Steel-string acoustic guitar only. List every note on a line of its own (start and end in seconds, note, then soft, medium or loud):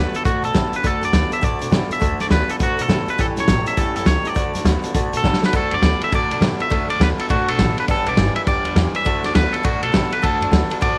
0.00 0.14 A3 medium
0.00 0.14 D4 medium
0.00 0.14 F#4 medium
0.00 0.12 A4 medium
0.13 0.25 D4 soft
0.13 0.26 F#4 soft
0.13 0.25 A4 medium
0.25 0.43 D3 medium
0.25 0.44 A3 medium
0.25 0.44 D4 medium
0.25 0.43 F#4 medium
0.25 0.41 A4 medium
0.42 0.53 D4 soft
0.42 0.54 F#4 medium
0.42 0.54 A4 medium
0.53 0.72 A3 medium
0.53 0.73 D4 medium
0.53 0.73 F#4 medium
0.53 0.72 A4 medium
0.73 0.83 D4 soft
0.73 0.84 F#4 soft
0.73 0.84 A4 medium
0.83 1.02 D3 medium
0.83 1.02 A3 medium
0.83 1.02 D4 medium
0.83 1.02 F#4 medium
0.83 1.00 A4 medium
1.01 1.12 D4 soft
1.01 1.13 F#4 medium
1.01 1.13 A4 medium
1.12 1.31 A3 medium
1.12 1.32 D4 medium
1.12 1.31 F#4 medium
1.12 1.30 A4 medium
1.31 1.41 D4 soft
1.31 1.41 F#4 soft
1.31 1.42 A4 medium
1.41 1.60 D3 medium
1.41 1.60 A3 medium
1.41 1.61 D4 medium
1.41 1.59 F#4 medium
1.41 1.58 A4 medium
1.59 1.70 D4 soft
1.59 1.71 F#4 medium
1.59 1.71 A4 medium
1.70 1.89 A3 medium
1.70 1.90 D4 medium
1.70 1.89 F#4 medium
1.70 1.88 A4 medium
1.89 2.00 D4 soft
1.89 2.00 F#4 soft
1.89 2.01 A4 soft
1.99 2.19 D3 medium
1.99 2.19 A3 medium
1.99 2.19 D4 medium
1.99 2.18 F#4 medium
1.99 2.16 A4 medium
2.17 2.29 D4 medium
2.17 2.30 F#4 medium
2.17 2.29 A4 soft
2.29 2.48 A3 soft
2.29 2.49 D4 medium
2.29 2.48 F#4 medium
2.29 2.47 A4 medium
2.48 2.59 D4 soft
2.48 2.59 F#4 soft
2.48 2.59 A4 medium
2.59 2.78 D3 medium
2.59 2.78 A3 medium
2.59 2.78 D4 medium
2.59 2.77 F#4 medium
2.59 2.75 A4 medium
2.77 2.88 D4 soft
2.77 2.88 A4 medium
2.88 3.07 A3 medium
2.88 3.07 D4 medium
2.88 3.07 F#4 medium
2.88 3.05 A4 medium
3.06 3.18 D4 soft
3.06 3.19 F#4 soft
3.06 3.18 A4 medium
3.18 3.37 A2 medium
3.18 3.37 E3 medium
3.18 3.37 G3 medium
3.18 3.37 C#4 medium
3.18 3.36 G4 medium
3.18 3.35 A4 medium
3.36 3.46 G3 soft
3.36 3.47 C#4 soft
3.36 3.48 G4 medium
3.36 3.48 A4 medium
3.47 3.66 G3 medium
3.47 3.66 G4 medium
3.47 3.64 A4 medium
3.66 3.76 G3 soft
3.66 3.76 C#4 soft
3.66 3.77 G4 medium
3.66 3.77 A4 medium
3.77 3.96 A2 medium
3.77 3.96 E3 medium
3.77 3.96 G3 medium
3.77 3.96 C#4 medium
3.77 3.95 G4 medium
3.77 3.94 A4 medium
3.96 4.04 G3 soft
3.96 4.05 C#4 medium
3.96 4.06 G4 soft
3.96 4.07 A4 medium
4.05 4.24 G3 medium
4.05 4.25 C#4 medium
4.05 4.24 G4 medium
4.05 4.23 A4 medium
4.25 4.35 G3 soft
4.25 4.36 C#4 soft
4.25 4.36 G4 medium
4.25 4.36 A4 medium
4.34 4.54 D3 medium
4.34 4.54 A3 medium
4.34 4.54 D4 medium
4.34 4.54 F#4 medium
4.34 4.52 A4 medium
4.53 4.64 D4 soft
4.53 4.65 F#4 medium
4.53 4.65 A4 medium
4.64 4.83 A3 medium
4.64 4.84 D4 medium
4.64 4.83 F#4 medium
4.64 4.81 A4 medium
4.82 4.94 D4 soft
4.82 4.95 F#4 soft
4.82 4.94 A4 medium
4.94 5.13 D3 medium
4.94 5.13 A3 medium
4.94 5.13 D4 medium
4.94 5.13 F#4 medium
4.94 5.11 A4 medium
5.12 5.23 D4 soft
5.12 5.24 F#4 medium
5.12 5.24 A4 medium
5.23 5.42 A3 medium
5.23 5.43 D4 medium
5.23 5.42 F#4 medium
5.23 5.41 A4 medium
5.42 5.53 D4 soft
5.42 5.54 F#4 medium
5.42 5.53 A4 medium
5.53 5.72 D3 medium
5.53 5.72 A3 medium
5.53 5.72 D4 medium
5.53 5.72 F#4 medium
5.53 5.71 A4 medium
5.72 5.83 D4 soft
5.72 5.84 F#4 soft
5.72 5.83 A4 medium
5.83 6.01 A3 medium
5.83 6.02 D4 medium
5.83 6.01 F#4 medium
5.83 6.00 A4 medium
6.01 6.12 D4 soft
6.01 6.12 F#4 soft
6.01 6.12 A4 medium
6.12 6.31 D3 medium
6.12 6.31 A3 medium
6.12 6.31 D4 medium
6.12 6.31 F#4 medium
6.12 6.29 A4 medium
6.30 6.41 D4 soft
6.30 6.42 F#4 medium
6.30 6.41 A4 medium
6.41 6.60 A3 medium
6.41 6.60 D4 medium
6.41 6.60 F#4 medium
6.41 6.58 A4 medium
6.59 6.69 D4 soft
6.59 6.70 F#4 soft
6.59 6.70 A4 medium
6.70 6.89 D3 medium
6.70 6.89 A3 medium
6.70 6.89 D4 medium
6.70 6.88 F#4 medium
6.70 6.87 A4 medium
6.88 6.99 D4 soft
6.88 7.00 F#4 soft
6.88 7.00 A4 medium
6.99 7.18 A3 medium
6.99 7.19 D4 medium
6.99 7.18 F#4 medium
6.99 7.17 A4 medium
7.18 7.29 D4 medium
7.18 7.30 F#4 medium
7.18 7.29 A4 medium
7.29 7.48 D3 medium
7.29 7.48 A3 medium
7.29 7.48 D4 medium
7.29 7.49 F#4 medium
7.29 7.47 A4 medium
7.48 7.58 D4 soft
7.48 7.59 F#4 medium
7.48 7.59 A4 medium
7.58 7.77 A3 medium
7.58 7.78 D4 medium
7.58 7.77 F#4 medium
7.58 7.76 A4 medium
7.77 7.87 D4 soft
7.77 7.89 F#4 soft
7.77 7.88 A4 medium
7.88 8.07 G3 medium
7.88 8.07 D4 medium
7.88 8.07 G4 medium
7.88 8.05 B4 medium
8.06 8.17 D4 soft
8.06 8.18 G4 medium
8.06 8.17 B4 medium
8.17 8.36 G3 medium
8.17 8.36 D4 medium
8.17 8.36 G4 medium
8.17 8.34 B4 medium
8.36 8.46 D4 soft
8.36 8.47 G4 soft
8.36 8.47 B4 medium
8.47 8.65 G3 medium
8.47 8.66 D4 medium
8.47 8.65 G4 loud
8.47 8.63 B4 medium
8.64 8.76 D4 soft
8.64 8.77 G4 medium
8.64 8.76 B4 medium
8.76 8.95 G3 medium
8.76 8.95 D4 medium
8.76 8.94 G4 medium
8.76 8.93 B4 medium
8.94 9.05 D4 soft
8.94 9.06 G4 medium
8.94 9.06 B4 soft
9.05 9.24 D3 medium
9.05 9.24 A3 medium
9.05 9.24 D4 medium
9.05 9.24 F#4 medium
9.05 9.22 A4 medium
9.23 9.34 D4 soft
9.23 9.35 F#4 soft
9.23 9.35 A4 medium
9.34 9.53 A3 medium
9.34 9.54 D4 medium
9.34 9.53 F#4 medium
9.34 9.51 A4 medium
9.52 9.63 D4 soft
9.52 9.64 F#4 soft
9.52 9.64 A4 medium
9.63 9.82 D3 medium
9.63 9.83 A3 medium
9.63 9.83 D4 medium
9.63 9.82 F#4 medium
9.63 9.81 A4 medium
9.82 9.92 D4 soft
9.82 9.93 F#4 soft
9.82 9.93 A4 medium
9.92 10.11 A3 medium
9.92 10.12 D4 medium
9.92 10.11 F#4 medium
9.92 10.09 A4 medium
10.11 10.22 D4 soft
10.11 10.22 F#4 soft
10.11 10.22 A4 medium
10.22 10.41 D3 medium
10.22 10.41 A3 medium
10.22 10.42 D4 medium
10.22 10.41 F#4 medium
10.22 10.39 A4 medium
10.41 10.51 D4 soft
10.41 10.52 F#4 medium
10.41 10.52 A4 medium
10.51 10.71 A3 medium
10.51 10.71 D4 medium
10.51 10.70 F#4 medium
10.51 10.69 A4 medium
10.70 10.80 D4 soft
10.70 10.81 F#4 medium
10.70 10.81 A4 medium
10.81 10.98 D3 medium
10.81 10.98 A3 medium
10.81 10.98 D4 medium
10.81 10.98 F#4 medium
10.81 10.98 A4 medium